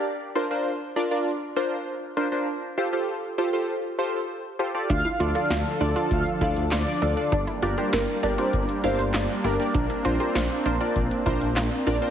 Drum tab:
HH |----------------|----------------|xxxxxxxxxxxxxxxx|xxxxxxxxxxxxxxxx|
CP |----------------|----------------|------------x---|------------x---|
SD |----------------|----------------|----o-------o---|----o-------o---|
BD |----------------|----------------|o-------o-o-----|o-------o-------|

HH |xxxxxxxxxxxxxxxx|
CP |------------x---|
SD |----o-------o---|
BD |o-------o-o-----|